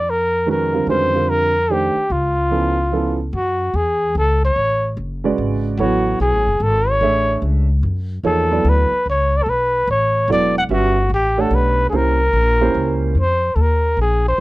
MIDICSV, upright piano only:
0, 0, Header, 1, 2, 480
1, 0, Start_track
1, 0, Tempo, 409556
1, 1024, Time_signature, 3, 2, 24, 8
1, 16880, End_track
2, 0, Start_track
2, 0, Title_t, "Upright piano"
2, 0, Program_c, 0, 0
2, 542, Note_on_c, 0, 51, 54
2, 548, Note_on_c, 0, 56, 49
2, 552, Note_on_c, 0, 61, 51
2, 555, Note_on_c, 0, 71, 59
2, 558, Note_on_c, 0, 66, 50
2, 828, Note_off_c, 0, 51, 0
2, 831, Note_off_c, 0, 56, 0
2, 833, Note_off_c, 0, 61, 0
2, 834, Note_off_c, 0, 71, 0
2, 836, Note_off_c, 0, 66, 0
2, 854, Note_on_c, 0, 50, 52
2, 855, Note_on_c, 0, 55, 53
2, 860, Note_on_c, 0, 60, 51
2, 866, Note_on_c, 0, 70, 65
2, 867, Note_on_c, 0, 65, 49
2, 1030, Note_on_c, 0, 51, 54
2, 1039, Note_on_c, 0, 61, 47
2, 1040, Note_on_c, 0, 56, 46
2, 1042, Note_on_c, 0, 66, 48
2, 1046, Note_on_c, 0, 71, 58
2, 1274, Note_off_c, 0, 50, 0
2, 1275, Note_off_c, 0, 55, 0
2, 1278, Note_off_c, 0, 60, 0
2, 1280, Note_off_c, 0, 70, 0
2, 1281, Note_off_c, 0, 65, 0
2, 1312, Note_off_c, 0, 51, 0
2, 1317, Note_off_c, 0, 56, 0
2, 1317, Note_off_c, 0, 61, 0
2, 1318, Note_off_c, 0, 66, 0
2, 1320, Note_off_c, 0, 71, 0
2, 1343, Note_on_c, 0, 50, 53
2, 1350, Note_on_c, 0, 55, 46
2, 1351, Note_on_c, 0, 60, 44
2, 1354, Note_on_c, 0, 65, 49
2, 1357, Note_on_c, 0, 70, 56
2, 1759, Note_off_c, 0, 50, 0
2, 1763, Note_off_c, 0, 55, 0
2, 1763, Note_off_c, 0, 60, 0
2, 1765, Note_off_c, 0, 65, 0
2, 1766, Note_off_c, 0, 70, 0
2, 1991, Note_on_c, 0, 57, 46
2, 1992, Note_on_c, 0, 51, 54
2, 1995, Note_on_c, 0, 67, 47
2, 1998, Note_on_c, 0, 62, 49
2, 2005, Note_on_c, 0, 72, 60
2, 2273, Note_off_c, 0, 51, 0
2, 2273, Note_off_c, 0, 57, 0
2, 2275, Note_off_c, 0, 67, 0
2, 2276, Note_off_c, 0, 62, 0
2, 2280, Note_off_c, 0, 72, 0
2, 2937, Note_on_c, 0, 53, 50
2, 2941, Note_on_c, 0, 59, 46
2, 2947, Note_on_c, 0, 64, 51
2, 2951, Note_on_c, 0, 61, 46
2, 2951, Note_on_c, 0, 69, 59
2, 3226, Note_off_c, 0, 53, 0
2, 3228, Note_off_c, 0, 59, 0
2, 3231, Note_off_c, 0, 64, 0
2, 3233, Note_off_c, 0, 61, 0
2, 3233, Note_off_c, 0, 69, 0
2, 3421, Note_on_c, 0, 53, 52
2, 3427, Note_on_c, 0, 59, 48
2, 3427, Note_on_c, 0, 61, 48
2, 3432, Note_on_c, 0, 64, 51
2, 3438, Note_on_c, 0, 69, 64
2, 3708, Note_off_c, 0, 53, 0
2, 3711, Note_off_c, 0, 59, 0
2, 3711, Note_off_c, 0, 61, 0
2, 3713, Note_off_c, 0, 64, 0
2, 3716, Note_off_c, 0, 69, 0
2, 6142, Note_on_c, 0, 56, 67
2, 6143, Note_on_c, 0, 49, 62
2, 6148, Note_on_c, 0, 66, 62
2, 6148, Note_on_c, 0, 71, 58
2, 6156, Note_on_c, 0, 74, 74
2, 6752, Note_off_c, 0, 56, 0
2, 6753, Note_off_c, 0, 49, 0
2, 6755, Note_off_c, 0, 66, 0
2, 6755, Note_off_c, 0, 71, 0
2, 6759, Note_off_c, 0, 74, 0
2, 6790, Note_on_c, 0, 59, 63
2, 6792, Note_on_c, 0, 54, 70
2, 6799, Note_on_c, 0, 64, 60
2, 6799, Note_on_c, 0, 69, 59
2, 6804, Note_on_c, 0, 73, 73
2, 7520, Note_off_c, 0, 54, 0
2, 7520, Note_off_c, 0, 59, 0
2, 7524, Note_off_c, 0, 64, 0
2, 7524, Note_off_c, 0, 69, 0
2, 7527, Note_off_c, 0, 73, 0
2, 8219, Note_on_c, 0, 57, 58
2, 8227, Note_on_c, 0, 62, 55
2, 8234, Note_on_c, 0, 73, 56
2, 8235, Note_on_c, 0, 68, 54
2, 8239, Note_on_c, 0, 76, 69
2, 8954, Note_off_c, 0, 57, 0
2, 8958, Note_off_c, 0, 62, 0
2, 8961, Note_off_c, 0, 73, 0
2, 8962, Note_off_c, 0, 68, 0
2, 8964, Note_off_c, 0, 76, 0
2, 9654, Note_on_c, 0, 53, 57
2, 9660, Note_on_c, 0, 58, 53
2, 9663, Note_on_c, 0, 63, 57
2, 9665, Note_on_c, 0, 68, 58
2, 9665, Note_on_c, 0, 73, 65
2, 9943, Note_off_c, 0, 53, 0
2, 9946, Note_off_c, 0, 58, 0
2, 9947, Note_off_c, 0, 63, 0
2, 9948, Note_off_c, 0, 68, 0
2, 9948, Note_off_c, 0, 73, 0
2, 9977, Note_on_c, 0, 54, 59
2, 9978, Note_on_c, 0, 59, 54
2, 9981, Note_on_c, 0, 64, 51
2, 9986, Note_on_c, 0, 74, 65
2, 9987, Note_on_c, 0, 69, 53
2, 10394, Note_off_c, 0, 54, 0
2, 10395, Note_off_c, 0, 59, 0
2, 10396, Note_off_c, 0, 64, 0
2, 10399, Note_off_c, 0, 69, 0
2, 10399, Note_off_c, 0, 74, 0
2, 12060, Note_on_c, 0, 54, 68
2, 12066, Note_on_c, 0, 59, 58
2, 12066, Note_on_c, 0, 64, 59
2, 12070, Note_on_c, 0, 69, 61
2, 12077, Note_on_c, 0, 74, 76
2, 12345, Note_off_c, 0, 54, 0
2, 12348, Note_off_c, 0, 59, 0
2, 12348, Note_off_c, 0, 64, 0
2, 12350, Note_off_c, 0, 69, 0
2, 12353, Note_off_c, 0, 74, 0
2, 12540, Note_on_c, 0, 61, 59
2, 12544, Note_on_c, 0, 66, 59
2, 12546, Note_on_c, 0, 55, 61
2, 12548, Note_on_c, 0, 76, 68
2, 12550, Note_on_c, 0, 71, 57
2, 12825, Note_off_c, 0, 61, 0
2, 12827, Note_off_c, 0, 66, 0
2, 12828, Note_off_c, 0, 55, 0
2, 12829, Note_off_c, 0, 76, 0
2, 12830, Note_off_c, 0, 71, 0
2, 13330, Note_on_c, 0, 57, 67
2, 13339, Note_on_c, 0, 67, 64
2, 13340, Note_on_c, 0, 62, 60
2, 13345, Note_on_c, 0, 73, 62
2, 13348, Note_on_c, 0, 78, 76
2, 13944, Note_off_c, 0, 57, 0
2, 13948, Note_off_c, 0, 67, 0
2, 13949, Note_off_c, 0, 62, 0
2, 13952, Note_off_c, 0, 73, 0
2, 13953, Note_off_c, 0, 78, 0
2, 13975, Note_on_c, 0, 58, 62
2, 13976, Note_on_c, 0, 61, 58
2, 13981, Note_on_c, 0, 67, 57
2, 13982, Note_on_c, 0, 64, 56
2, 13989, Note_on_c, 0, 72, 65
2, 14262, Note_off_c, 0, 58, 0
2, 14262, Note_off_c, 0, 61, 0
2, 14265, Note_off_c, 0, 64, 0
2, 14265, Note_off_c, 0, 67, 0
2, 14269, Note_off_c, 0, 72, 0
2, 14777, Note_on_c, 0, 58, 76
2, 14778, Note_on_c, 0, 61, 66
2, 14782, Note_on_c, 0, 64, 61
2, 14784, Note_on_c, 0, 67, 68
2, 14792, Note_on_c, 0, 72, 77
2, 15387, Note_off_c, 0, 58, 0
2, 15388, Note_off_c, 0, 61, 0
2, 15390, Note_off_c, 0, 64, 0
2, 15391, Note_off_c, 0, 67, 0
2, 15395, Note_off_c, 0, 72, 0
2, 16880, End_track
0, 0, End_of_file